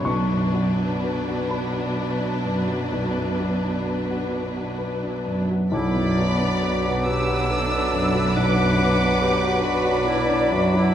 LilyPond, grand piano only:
\new Staff \with { instrumentName = "Grand piano" } { \time 12/8 \key b \minor \tempo 4. = 44 << { cis'''4. b''2. r4. | r1. | } \\ { b,,16 fis,16 fis16 d'16 b'16 fis'16 b'16 fis'16 b'16 d'16 fis,16 fis16 b,,16 fis,16 fis16 d'16 b'16 fis'16 b'16 fis'16 b'16 d'16 fis,16 fis16 | b,,16 fis,16 fis16 d'16 b'16 fis'16 b'16 fis'16 b'16 d'16 fis,16 fis16 b,,16 fis,16 fis16 d'16 b'16 fis'16 b'16 fis'16 b'16 d'16 fis,16 fis16 | } >> }